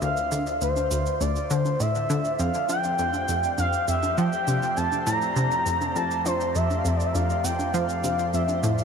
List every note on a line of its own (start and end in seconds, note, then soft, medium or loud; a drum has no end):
0.00 2.37 D2 medium
0.00 0.12 D2 loud
0.00 2.40 D3 medium
0.00 3.44 D4 medium
0.00 2.40 F4 medium
0.00 4.23 C5 medium
0.00 8.84 C5 medium
0.00 8.84 D5 medium
0.00 0.57 F5 loud
0.00 shaker medium
0.17 shaker soft
0.32 0.57 D3 medium
0.32 high conga soft
0.32 shaker medium
0.46 shaker soft
0.61 0.87 D2 medium
0.61 1.22 C5 loud
0.61 shaker medium
0.76 high conga soft
0.76 shaker soft
0.91 1.08 D2 medium
0.91 shaker medium
1.06 shaker soft
1.21 1.38 D2 medium
1.21 1.52 D5 loud
1.21 high conga soft
1.21 shaker medium
1.36 shaker soft
1.50 1.76 D3 loud
1.50 1.81 C5 loud
1.50 shaker medium
1.65 high conga soft
1.65 shaker soft
1.80 2.05 A2 medium
1.80 2.41 E5 loud
1.80 shaker medium
1.95 shaker soft
2.10 2.20 D3 loud
2.10 high conga soft
2.10 shaker medium
2.25 shaker soft
2.39 2.50 F2 loud
2.39 8.84 F2 medium
2.39 8.84 F3 medium
2.39 2.68 F5 loud
2.39 shaker medium
2.54 8.84 C4 medium
2.54 shaker soft
2.66 2.95 F3 medium
2.66 7.79 G4 medium
2.66 3.54 G5 loud
2.66 high conga soft
2.66 shaker medium
2.76 8.84 A3 medium
2.84 shaker soft
2.99 3.24 F2 medium
2.99 shaker medium
3.14 high conga soft
3.14 shaker soft
3.28 3.45 F2 medium
3.28 shaker medium
3.43 shaker soft
3.58 3.75 F2 medium
3.58 3.86 F5 loud
3.58 high conga soft
3.58 shaker medium
3.73 shaker soft
3.88 4.13 F2 medium
3.88 4.19 E5 loud
3.88 shaker medium
4.03 high conga soft
4.03 shaker soft
4.17 4.28 F3 loud
4.17 4.78 G5 loud
4.17 shaker medium
4.33 shaker soft
4.48 4.58 C3 medium
4.48 high conga soft
4.48 shaker medium
4.63 shaker soft
4.77 4.87 F2 medium
4.77 5.06 A5 loud
4.77 shaker medium
4.92 high conga soft
4.92 shaker soft
5.06 5.32 A2 loud
5.06 5.97 A#5 loud
5.06 shaker medium
5.22 shaker soft
5.36 5.47 C3 loud
5.36 high conga soft
5.36 shaker medium
5.51 shaker soft
5.66 5.91 F2 medium
5.66 shaker medium
5.81 high conga soft
5.81 shaker soft
5.95 6.06 F2 medium
5.95 6.25 A5 loud
5.95 shaker medium
6.11 shaker soft
6.25 6.51 F3 medium
6.25 6.57 C5 loud
6.25 high conga soft
6.25 shaker medium
6.41 shaker soft
6.55 6.81 F2 medium
6.55 6.80 E5 loud
6.55 shaker medium
6.70 high conga soft
6.70 shaker soft
6.78 6.89 F5 medium
6.85 7.02 F2 medium
6.85 6.98 E5 medium
6.85 shaker medium
6.97 7.07 D5 medium
6.97 shaker soft
7.06 7.16 E5 medium
7.14 7.32 F2 medium
7.14 7.45 F5 loud
7.14 high conga soft
7.14 shaker medium
7.30 shaker soft
7.44 7.70 F2 medium
7.44 7.75 G5 loud
7.44 shaker medium
7.59 8.84 F4 medium
7.59 high conga soft
7.59 shaker soft
7.74 7.84 F3 loud
7.74 8.33 F5 loud
7.74 shaker medium
7.89 shaker soft
8.04 8.14 C3 medium
8.04 high conga soft
8.04 shaker medium
8.19 shaker soft
8.33 8.44 F2 medium
8.33 8.84 E5 loud
8.33 shaker medium
8.48 high conga soft
8.48 shaker soft
8.63 8.84 A2 loud
8.63 shaker medium
8.78 shaker soft